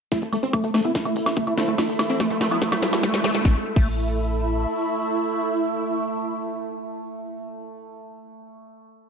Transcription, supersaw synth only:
0.12 0.17 E4 loud
0.22 0.28 A3 medium
0.33 0.38 A3 medium
0.43 0.49 C4 loud
0.53 0.59 A3 medium
0.64 0.69 A3 medium
0.74 0.80 A3 medium
0.85 1.70 E4 loud
1.78 1.84 E4 loud
1.89 1.94 A3 medium
1.99 2.05 A3 medium
2.10 2.15 C4 loud
2.20 2.26 A3 medium
2.30 2.36 A3 medium
2.41 2.46 A3 medium
2.51 3.37 E4 loud
3.45 3.57 E4 medium
3.76 7.54 E4 loud

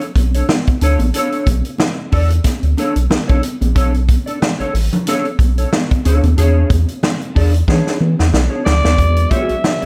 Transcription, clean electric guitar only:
0.17 muted clean electric guitar stroke soft
0.35 0.46 D4 medium
0.35 0.46 A4 medium
0.35 0.45 C#5 medium
0.68 muted clean electric guitar stroke soft
0.82 0.99 D4 loud
0.82 1.00 A4 medium
0.82 1.00 C#5 loud
1.15 1.45 D4 medium
1.15 1.45 A4 loud
1.15 1.46 C#5 loud
1.65 muted clean electric guitar stroke soft
1.98 muted clean electric guitar stroke soft
2.12 2.30 D4 medium
2.12 2.30 A4 loud
2.12 2.30 D5 loud
2.31 muted clean electric guitar stroke soft
2.64 muted clean electric guitar stroke soft
2.78 2.95 D4 medium
2.78 2.96 A4 loud
2.78 2.95 C#5 medium
2.96 muted clean electric guitar stroke soft
3.10 muted clean electric guitar stroke soft
3.28 3.42 D4 medium
3.28 3.42 A4 medium
3.28 3.42 C#5 medium
3.43 muted clean electric guitar stroke soft
3.62 muted clean electric guitar stroke soft
3.75 3.93 D4 medium
3.75 3.94 A4 medium
3.75 3.93 C#5 medium
3.94 muted clean electric guitar stroke soft
4.09 muted clean electric guitar stroke soft
4.26 4.38 D4 medium
4.26 4.38 A4 medium
4.26 4.37 D5 medium
4.41 muted clean electric guitar stroke soft
4.60 4.74 D4 medium
4.60 4.74 A4 medium
4.60 4.73 C#5 medium
4.75 muted clean electric guitar stroke soft
4.92 muted clean electric guitar stroke medium
5.07 5.25 D4 medium
5.07 5.25 A4 loud
5.07 5.26 C#5 loud
5.41 muted clean electric guitar stroke soft
5.58 5.69 D4 soft
5.58 5.69 A4 medium
5.58 5.69 C#5 medium
5.91 muted clean electric guitar stroke soft
6.05 6.26 D4 medium
6.05 6.24 A4 medium
6.05 6.23 C#5 loud
6.24 muted clean electric guitar stroke soft
6.37 6.68 D4 medium
6.37 6.68 G#4 loud
6.37 6.69 C#5 loud
6.88 muted clean electric guitar stroke soft
7.21 muted clean electric guitar stroke soft
7.35 7.53 D4 medium
7.35 7.53 G#4 medium
7.35 7.53 D5 loud
7.54 muted clean electric guitar stroke soft
7.68 7.98 D4 medium
7.68 7.99 G#4 medium
7.68 7.99 C#5 medium
8.00 muted clean electric guitar stroke medium
8.19 muted clean electric guitar stroke soft
8.33 muted clean electric guitar stroke soft
8.50 8.64 D4 medium
8.50 8.65 G#4 medium
8.50 8.65 C#5 medium
8.65 muted clean electric guitar stroke soft
8.84 muted clean electric guitar stroke soft
9.31 9.53 F#4 medium
9.31 9.53 G#4 medium
9.31 9.53 D5 medium
9.82 9.86 D5 medium

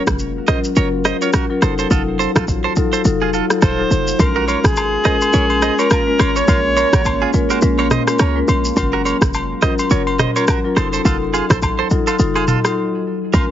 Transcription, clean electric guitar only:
0.48 0.59 C5 medium
0.48 0.59 D#5 medium
0.77 0.88 A#4 medium
0.77 0.87 C#5 medium
1.05 1.17 C5 medium
1.05 1.16 D#5 medium
1.22 1.30 A#4 medium
1.22 1.30 C#5 medium
1.34 1.45 F#4 medium
1.34 1.45 A#4 medium
1.62 1.74 A4 medium
1.62 1.73 C5 medium
1.79 1.87 A4 medium
1.79 1.87 C5 medium
1.91 2.02 F4 medium
1.91 2.02 A4 medium
2.19 2.31 A4 medium
2.19 2.30 C5 medium
2.36 2.44 F4 medium
2.36 2.44 A4 medium
2.64 2.73 A4 medium
2.64 2.72 C5 medium
2.93 3.01 A4 medium
2.93 3.01 C5 medium
3.22 3.30 F4 medium
3.22 3.29 G#4 medium
3.34 3.45 F4 medium
3.34 3.44 A4 medium
3.62 3.81 F4 medium
3.62 3.81 A4 medium
4.36 4.44 F#4 medium
4.36 4.44 A#4 medium
4.48 4.59 A#4 medium
4.48 4.59 C#5 medium
5.05 5.16 C5 medium
5.05 5.16 D#5 medium
5.34 5.45 A#4 medium
5.34 5.45 C#5 medium
5.62 5.74 C5 medium
5.62 5.73 D#5 medium
5.79 5.87 A#4 medium
5.79 5.87 C#5 medium
5.91 6.02 F4 medium
5.91 6.02 A#4 medium
6.19 6.31 A#4 medium
6.19 6.30 C#5 medium
6.36 6.44 A#4 medium
6.36 6.44 C#5 medium
6.48 6.59 F4 medium
6.48 6.59 A#4 medium
6.77 6.88 A#4 medium
6.77 6.87 C#5 medium
6.93 7.02 F#4 medium
6.93 7.01 A#4 medium
7.22 7.30 F4 medium
7.22 7.30 G#4 medium
7.50 7.59 F#4 medium
7.50 7.58 A#4 medium
7.79 7.87 A#4 medium
7.79 7.87 C#5 medium
7.91 8.02 C5 medium
7.91 8.02 D#5 medium
8.20 8.39 A#4 medium
8.20 8.38 C#5 medium
8.93 9.02 F#4 medium
8.93 9.01 A#4 medium
9.05 9.17 A#4 medium
9.05 9.16 C#5 medium
9.62 9.74 C5 medium
9.62 9.73 D#5 medium
9.91 10.02 A#4 medium
9.91 10.02 C#5 medium
10.19 10.31 C5 medium
10.19 10.30 D#5 medium
10.36 10.44 A#4 medium
10.36 10.44 C#5 medium
10.48 10.59 F#4 medium
10.48 10.59 A#4 medium
10.76 10.88 A4 medium
10.76 10.87 C5 medium
10.93 11.01 A4 medium
10.93 11.01 C5 medium
11.05 11.16 F4 medium
11.05 11.16 A4 medium
11.34 11.45 F4 medium
11.34 11.44 G#4 medium
11.50 11.59 A4 medium
11.50 11.58 C5 medium
11.79 11.87 A4 medium
11.79 11.87 C5 medium
12.07 12.16 F4 medium
12.07 12.15 A4 medium
12.36 12.44 F4 medium
12.36 12.44 G#4 medium
12.48 12.59 F4 medium
12.48 12.59 A4 medium
13.34 13.45 F4 medium
13.34 13.44 A#4 loud

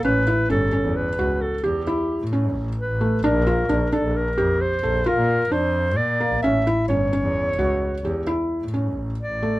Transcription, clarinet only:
0.04 0.47 B4 medium
0.51 0.98 A4 medium
0.96 1.43 B4 medium
1.41 1.63 A4 medium
1.64 2.28 G4 medium
2.78 3.21 B4 medium
3.24 3.95 A#4 medium
3.93 4.18 A4 medium
4.16 4.62 A#4 medium
4.61 5.08 C5 medium
5.06 5.53 A#4 medium
5.52 5.98 C5 medium
5.97 6.42 D5 medium
6.43 6.86 E5 medium
6.88 8.23 C#5 medium
9.20 9.60 D5 medium

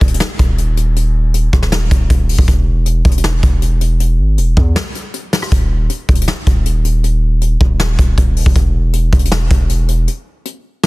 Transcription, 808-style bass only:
0.01 0.19 D#1 loud
0.39 1.49 D#1 loud
1.53 1.90 D#1 loud
1.91 2.09 D#1 loud
2.10 2.37 D#1 loud
2.38 2.47 D#1 loud
2.48 3.03 E1 loud
3.05 3.41 E1 loud
3.43 4.20 E1 loud
4.19 4.39 G#1 loud
4.38 4.56 E1 loud
4.57 4.75 E2 loud
5.52 5.88 D#1 loud
6.09 6.27 D#1 loud
6.47 7.57 D#1 loud
7.61 7.97 D#1 loud
7.99 8.17 D#1 loud
8.18 8.45 D#1 loud
8.46 8.55 D#1 loud
8.56 9.10 E1 loud
9.13 9.49 E1 loud
9.51 10.08 E1 loud

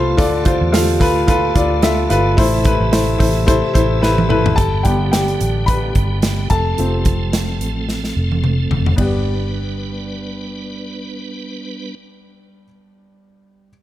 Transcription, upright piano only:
0.00 0.17 F4 loud
0.00 0.18 A4 loud
0.00 0.21 B4 loud
0.00 0.20 C5 loud
0.00 0.19 D5 medium
0.00 0.16 F5 medium
0.00 0.21 A5 medium
0.17 0.96 D3 medium
0.17 0.40 F4 loud
0.17 0.41 A4 loud
0.17 0.41 D5 loud
0.45 0.68 F4 loud
0.45 0.68 A4 medium
0.45 0.68 C5 loud
0.72 0.95 F4 medium
0.72 0.95 A4 medium
0.72 0.96 F5 medium
1.00 1.23 F4 medium
1.00 1.23 A4 medium
1.00 1.23 B4 loud
1.27 1.50 F4 loud
1.27 1.51 A4 loud
1.27 1.51 B4 loud
1.55 1.78 F4 loud
1.55 1.78 A4 medium
1.55 1.79 D5 loud
1.82 2.05 F4 medium
1.82 2.05 A4 medium
1.82 2.06 E5 loud
2.10 2.32 F4 medium
2.10 2.33 A4 medium
2.10 2.33 B4 loud
2.37 3.16 A2 medium
2.37 2.60 E4 loud
2.37 2.60 A4 loud
2.37 2.61 C5 loud
2.64 2.87 E4 medium
2.64 2.88 A4 medium
2.64 2.88 B4 loud
2.92 3.15 E4 medium
2.92 3.15 A4 medium
2.92 3.15 C5 medium
3.18 3.42 E4 medium
3.18 3.42 A4 medium
3.18 3.42 C5 loud
3.47 3.70 E4 loud
3.47 3.70 A4 loud
3.47 3.70 C5 loud
3.73 3.97 E4 loud
3.73 3.97 A4 medium
3.73 3.97 C5 loud
4.01 4.24 E4 medium
4.01 4.25 A4 medium
4.01 4.25 B4 loud
4.29 4.52 E4 medium
4.29 4.52 A4 medium
4.29 4.52 B4 loud
4.56 4.83 A4 medium
4.56 4.85 A5 medium
4.83 5.63 D3 soft
4.83 5.63 G3 soft
4.83 5.64 B3 medium
4.83 5.11 G4 medium
4.83 5.10 G5 medium
5.12 5.64 G4 medium
5.12 5.69 G5 medium
5.66 6.47 B4 medium
5.66 6.52 B5 medium
6.50 8.40 A4 medium
6.50 8.39 A5 medium
6.78 7.56 F3 soft
6.78 7.57 A3 soft
6.78 7.57 C4 medium
8.96 12.64 G2 medium
8.96 12.63 B3 medium
8.96 12.64 D4 medium
8.96 12.65 G4 medium
9.01 12.66 D5 medium

